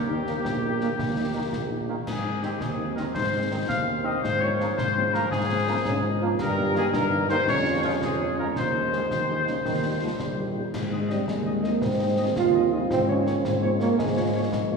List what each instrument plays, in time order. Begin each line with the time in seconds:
Already playing: tuba D#2, euphonium A#3, trumpet section G4
0.08 french horn section D#3 A#3 D#4
0.27 french horn section D#3 A#3 D#4, trombone section D#3 A#3, snare
0.45 tuba A#1, concert bass drum, snare
0.63 french horn section D#3 A#3 D#4
0.80 french horn section D#3 A#3 D#4, trombone section D#3 A#3, snare
0.98 tuba D#2, concert bass drum, snare
1.16 french horn section D#3 A#3 D#4
1.34 trombone section D#3 A#3, french horn section D#3 A#3 D#4
1.52 tuba A#1, concert bass drum, snare
1.69 french horn section D#3 A#3 D#4
1.88 french horn section D#3 A#3 D#4, trombone section D#3 A#3
2.06 tuba G#2, trumpet section G#4, concert bass drum, snare, crash
2.23 french horn section D#3 C4 D#4
2.42 french horn section D#3 C4 D#4, trombone section D#3 C4, trumpet section G4, snare
2.60 tuba D#2, euphonium C4, trumpet section G#4, concert bass drum, snare
2.79 french horn section D#3 C4 D#4
2.96 french horn section D#3 C4 D#4, trombone section D#3 C4, trumpet section A#4, snare
3.14 tuba G#2, euphonium D#4, trumpet section C5, concert bass drum, snare
3.33 french horn section D#3 C4 D#4
3.51 trombone section D#3 C4, french horn section D#3 C4 D#4
3.68 tuba D#2, euphonium C4, trumpet section F5, concert bass drum, snare
3.88 french horn section D#3 C4 D#4
4.04 trombone section D#3 C4, french horn section D#3 C4 D#4, trumpet section D#5
4.22 tuba G#2, trumpet section C5, concert bass drum, snare
4.41 french horn section F3 A#3 C#4, trumpet section C#5
4.60 trombone section F3 A#3, french horn section F3 A#3 C#4, snare
4.77 tuba G#2, trumpet section C5, concert bass drum, snare
4.96 french horn section F3 A#3 C#4
5.13 french horn section F3 A#3 C#4, trombone section F3 A#3, trumpet section A#4, snare
5.31 tuba G#2, trumpet section G#4, concert bass drum, snare
5.50 french horn section F3 A#3 C#4
5.67 french horn section F3 A#3 C#4, trombone section F3 A#3
5.85 tuba G#2, euphonium C#4, concert bass drum, snare
6.03 french horn section F3 A#3 C#4, euphonium D#4
6.21 french horn section F3 A#3 C#4, trombone section F3 A#3, euphonium F4
6.39 tuba G2, euphonium G4, trumpet section A#4, concert bass drum, snare, crash
6.57 french horn section D#3 A#3 D#4
6.75 french horn section D#3 A#3 D#4, trombone section D#3 A#3, trumpet section G#4, snare
6.93 tuba G2, euphonium D#4, trumpet section A#4, concert bass drum, snare
7.10 french horn section D#3 A#3 D#4
7.29 french horn section D#3 A#3 D#4, trombone section D#3 A#3, trumpet section C5, snare
7.47 tuba F2, euphonium C#4, trumpet section C#5, concert bass drum, snare
7.65 french horn section F3 G#3 C#4
7.83 french horn section F3 G#3 C#4, trombone section F3 G#3, trumpet section F4
8.02 tuba F2, trumpet section G#4, concert bass drum, snare
8.20 french horn section F3 G#3 C#4
8.38 french horn section F3 G#3 C#4, trombone section F3 G#3, trumpet section A#4
8.56 tuba D#2, euphonium D#4, trumpet section C5, concert bass drum, snare
8.74 french horn section G#3 D#4
8.92 trombone section D#3 G#3, french horn section G#3 D#4, snare
9.11 tuba D#2, trombone section D#3, concert bass drum, snare
9.30 french horn section G#3 D#4
9.47 trombone section C#3, french horn section G#3 D#4, snare
9.65 tuba D#2, trombone section D#3, concert bass drum, snare
9.84 french horn section G3 A#3 D#4
10.02 trombone section F3, french horn section G3 A#3 D#4
10.19 tuba A#1, trombone section G3, concert bass drum, snare
10.37 french horn section G3 A#3 D#4
10.55 french horn section G3 A#3 D#4
10.73 tuba G#2, euphonium G#3, concert bass drum, snare, crash
10.91 french horn section G#3 C4 D#4, trumpet section D#5
11.08 euphonium G3, french horn section G#3 C4 D#4, trumpet section D#5, snare
11.28 tuba D#2, euphonium G#3, concert bass drum, snare
11.45 french horn section G#3 C4 D#4, trumpet section D#5
11.62 french horn section G#3 C4 D#4, euphonium A#3, trumpet section D#5, snare
11.82 tuba G#2, euphonium C4, concert bass drum, snare
11.99 french horn section G#3 C4 D#4, trumpet section D#5
12.17 french horn section G#3 C4 D#4, trumpet section D#5
12.36 tuba D#2, euphonium F4, concert bass drum, snare
12.53 french horn section G#3 C4 D#4, trumpet section D#5
12.72 french horn section G#3 C4 D#4, euphonium D#4, trumpet section D#5
12.91 tuba G#2, euphonium C4, concert bass drum, snare
13.08 french horn section F3 A#3 F4, euphonium C#4, trumpet section C#5
13.26 french horn section F3 A#3 F4, trumpet section C#5, snare
13.45 tuba G#2, euphonium C4, concert bass drum, snare
13.62 french horn section F3 A#3 F4, trumpet section C#5
13.80 french horn section F3 A#3 F4, euphonium A#3, trumpet section C#5, snare
13.98 tuba G#2, euphonium G#3, concert bass drum, snare
14.15 french horn section F3 A#3 F4, trumpet section C#5
14.34 french horn section F3 A#3 F4, trumpet section C#5
14.52 tuba G#2, concert bass drum, snare
14.71 french horn section F3 A#3 F4, trumpet section C#5